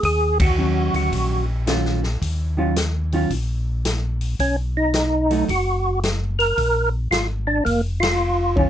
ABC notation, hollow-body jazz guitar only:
X:1
M:4/4
L:1/8
Q:"Swing" 1/4=110
K:Ebm
V:1 name="Hollow-body jazz guitar" clef=bass
z2 [E,G,D]3 z [E,G,DF] z | z [E,G,DF] z [E,G,DF] z4 | z3 [^F,=A,^D] z4 | z6 z [E,G,DF] |]